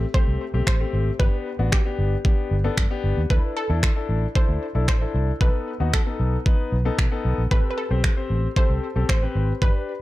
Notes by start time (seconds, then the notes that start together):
Already playing: A4
0.14 A3 C4 G4 C5, kick
0.27 C2
0.54 B1 A3 C4 G4
0.67 A1 C5, finger snap, kick
0.80 A3 C4 G4
0.93 G#1
1.19 G1 B3 D4 G4 B4, kick
1.59 A1 B3 D4 F#4
1.72 G4, finger snap, kick
1.85 B3 D4 G4
1.99 G1
2.25 B3 D4 G4, kick
2.51 G1
2.64 B3 D4 A4
2.77 G2, finger snap, kick
2.90 B3 D4 G4
3.04 G1
3.17 D#2
3.30 D2 D4 E4 A4 B4, kick
3.57 A4
3.69 E2 D4 E4 A4
3.83 finger snap, kick
3.96 D4 E4 A4
4.09 A1
4.35 D4 E4 A4 C5, kick
4.49 D2
4.75 B1 D4 E4 A4
4.88 A1 C5, finger snap, kick
5.01 D4 E4 A4
5.14 C2
5.41 B1 B3 D#4 A4 B4, kick
5.80 D#2 B3 D#4 F#4
5.93 A4, finger snap, kick
6.06 B3 D#4 A4
6.20 B1
6.46 B3 D#4 B4, kick
6.72 B1
6.85 B3 D#4 A4
6.99 B2, finger snap, kick
7.11 B3 D#4 A4
7.25 B1
7.38 A#1
7.51 A1 C4 G4 A4 B4, kick
7.71 B4
7.78 A4
7.91 B1 C4 G4 C5
8.04 finger snap, kick
8.17 C4 G4 C5
8.30 A1
8.56 C4 G4 A4 C5, kick
8.70 C2
8.96 B1 C4 G4 A4
9.09 A1 C5, finger snap, kick
9.22 C4 G4 B4
9.35 G#1
9.62 G1 D4 G4 B4, kick